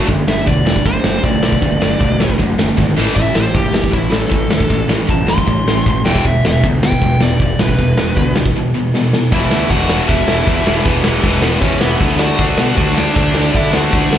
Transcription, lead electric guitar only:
0.28 0.47 E5 medium
0.47 0.84 D5 medium
0.85 1.23 C5 loud
1.24 2.36 D5 medium
3.15 3.34 E5 loud
3.36 3.55 C5 medium
3.55 3.92 G4 loud
3.94 4.12 E4 loud
4.11 4.86 A4 loud
5.10 5.28 A5 loud
5.30 6.04 C6 medium
6.05 6.24 G5 medium
6.27 6.44 E5 loud
6.47 6.64 E5 loud
6.83 7.20 G5 loud
7.22 7.40 D5 medium
7.42 7.60 D5 medium
7.60 8.34 B4 loud
9.33 9.69 E4 loud
9.33 9.70 E5 loud
9.71 10.07 F#4 medium
9.71 10.08 F#5 loud
10.09 10.82 E4 medium
10.09 10.84 E5 loud
10.84 11.58 B3 medium
10.84 11.57 B4 loud
11.61 11.80 C#4 medium
11.61 11.81 C#5 loud
11.81 12.17 B3 medium
11.81 12.21 B4 medium
12.20 12.93 F#4 medium
12.20 12.99 F#5 loud
12.97 13.50 D4 medium
12.97 13.56 D5 loud
13.55 13.72 E4 medium
13.55 13.74 E5 medium
13.75 14.18 F#4 medium
13.75 14.18 F#5 medium

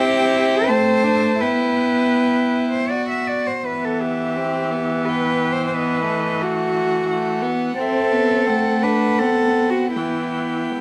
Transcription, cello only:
0.00 0.70 G4 medium
0.68 1.42 C5 medium
1.40 2.71 B4 medium
2.72 2.91 C5 medium
2.89 3.08 D5 medium
3.09 3.28 E5 medium
3.27 3.48 D5 medium
3.46 3.67 C5 medium
3.65 3.86 B4 medium
3.85 4.03 A4 medium
4.01 5.07 G4 medium
5.05 5.54 B4 medium
5.52 5.65 C5 medium
5.66 5.75 C5 soft
5.73 6.42 B4 medium
6.41 7.43 F#4 medium
7.78 8.84 A4 medium
8.82 9.20 B4 medium
9.18 9.71 A4 medium
9.70 9.95 F#4 medium
9.95 10.81 E4 soft

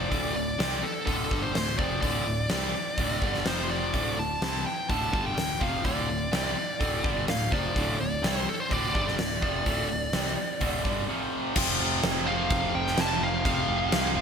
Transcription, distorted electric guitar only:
0.00 0.10 C3 medium
0.00 0.10 F3 loud
0.10 0.33 D2 medium
0.10 0.33 A2 medium
0.10 0.34 D3 loud
0.34 0.54 D2 medium
0.34 0.54 A2 medium
0.58 0.82 C3 medium
0.58 0.82 G3 loud
0.58 0.82 C4 loud
0.83 muted distorted electric guitar stroke medium
1.06 1.30 D2 medium
1.06 1.30 A2 medium
1.06 1.29 D3 medium
1.30 1.53 G2 medium
1.30 1.54 D3 medium
1.30 1.54 G3 medium
1.54 1.73 D2 medium
1.54 1.74 A2 medium
1.77 2.01 F2 medium
1.77 2.01 C3 medium
1.77 2.01 F3 medium
2.01 2.25 D2 medium
2.01 2.25 A2 medium
2.01 2.26 D3 loud
2.26 2.45 D2 medium
2.26 2.45 A2 medium
2.50 2.73 C3 medium
2.50 2.73 G3 medium
2.50 2.74 C4 loud
2.74 muted distorted electric guitar stroke medium
2.98 3.21 D2 medium
2.98 3.22 A2 medium
2.98 3.22 D3 medium
3.22 3.45 G2 medium
3.22 3.45 D3 medium
3.22 3.46 G3 loud
3.45 3.93 F2 medium
3.45 3.93 C3 medium
3.45 3.93 F3 medium
3.93 4.16 D2 medium
3.93 4.17 A2 medium
3.93 4.17 D3 loud
4.18 4.37 D2 medium
4.18 4.37 A2 medium
4.41 4.64 C3 medium
4.41 4.65 G3 medium
4.41 4.65 C4 loud
4.66 muted distorted electric guitar stroke medium
4.89 5.12 D2 medium
4.89 5.12 A2 medium
4.89 5.11 D3 loud
5.12 5.36 G2 medium
5.12 5.36 D3 medium
5.12 5.36 G3 loud
5.36 5.56 D2 medium
5.36 5.56 A2 medium
5.59 5.83 F2 medium
5.59 5.84 C3 loud
5.59 5.84 F3 medium
5.84 6.06 D2 medium
5.84 6.07 A2 loud
5.84 6.08 D3 loud
6.07 6.27 D2 medium
6.07 6.27 A2 medium
6.32 6.55 C3 medium
6.32 6.55 G3 medium
6.32 6.56 C4 loud
6.56 muted distorted electric guitar stroke medium
6.79 7.03 D2 medium
6.79 7.03 A2 medium
6.79 7.03 D3 loud
7.04 7.27 G2 medium
7.04 7.27 D3 medium
7.04 7.27 G3 medium
7.28 7.47 D2 medium
7.28 7.47 A2 medium
7.51 7.74 F2 medium
7.51 7.74 C3 medium
7.51 7.75 F3 medium
7.76 7.98 D2 loud
7.76 7.98 A2 medium
7.76 7.99 D3 loud
7.99 8.18 D2 medium
7.99 8.18 A2 medium
8.22 8.45 C3 medium
8.22 8.46 G3 loud
8.22 8.46 C4 loud
8.46 muted distorted electric guitar stroke medium
8.69 8.93 D2 medium
8.69 8.93 A2 medium
8.69 8.93 D3 medium
8.94 9.17 G2 medium
8.94 9.17 D3 medium
8.94 9.18 G3 loud
9.17 9.37 D2 medium
9.17 9.37 A2 medium
9.41 9.65 F2 medium
9.41 9.65 C3 medium
9.41 9.65 F3 medium
9.65 9.87 D2 medium
9.65 9.87 A2 loud
9.65 9.89 D3 loud
9.89 10.08 D2 medium
9.89 10.08 A2 medium
10.13 10.36 C3 medium
10.13 10.37 G3 medium
10.13 10.37 C4 medium
10.38 muted distorted electric guitar stroke medium
10.60 10.83 D2 medium
10.60 10.83 A2 medium
10.60 10.83 D3 medium
10.84 11.07 G2 medium
10.84 11.07 D3 medium
10.84 11.08 G3 medium
11.08 11.53 F2 medium
11.08 11.55 C3 loud
11.08 11.55 F3 loud
11.55 12.28 F2 medium
11.55 12.26 C3 medium
11.55 12.25 F3 medium
12.25 13.42 F2 medium
12.25 13.43 C3 medium
12.25 13.45 F3 medium
13.43 14.13 F2 loud
13.43 14.14 C3 medium
13.43 14.14 F3 loud
14.15 14.21 F2 medium
14.15 14.21 C3 medium
14.15 14.21 F3 medium

